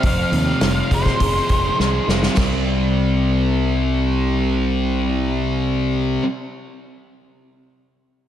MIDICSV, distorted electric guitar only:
0, 0, Header, 1, 2, 480
1, 0, Start_track
1, 0, Tempo, 584852
1, 27, Time_signature, 4, 2, 24, 8
1, 6797, End_track
2, 0, Start_track
2, 0, Title_t, "Distorted electric guitar"
2, 0, Program_c, 0, 30
2, 0, Note_on_c, 0, 60, 66
2, 35, Note_on_c, 0, 41, 73
2, 278, Note_on_c, 0, 48, 66
2, 523, Note_on_c, 0, 53, 66
2, 750, Note_on_c, 0, 56, 67
2, 1004, Note_on_c, 0, 68, 77
2, 1231, Note_off_c, 0, 41, 0
2, 1234, Note_off_c, 0, 60, 0
2, 1237, Note_on_c, 0, 60, 61
2, 1466, Note_off_c, 0, 68, 0
2, 1473, Note_off_c, 0, 48, 0
2, 1476, Note_on_c, 0, 68, 73
2, 1711, Note_off_c, 0, 60, 0
2, 1716, Note_off_c, 0, 53, 0
2, 1721, Note_on_c, 0, 60, 59
2, 1949, Note_off_c, 0, 56, 0
2, 1950, Note_on_c, 0, 48, 86
2, 1952, Note_off_c, 0, 68, 0
2, 1954, Note_off_c, 0, 60, 0
2, 1968, Note_on_c, 0, 55, 92
2, 1983, Note_on_c, 0, 60, 92
2, 5101, Note_off_c, 0, 48, 0
2, 5110, Note_off_c, 0, 55, 0
2, 5117, Note_off_c, 0, 60, 0
2, 6797, End_track
0, 0, End_of_file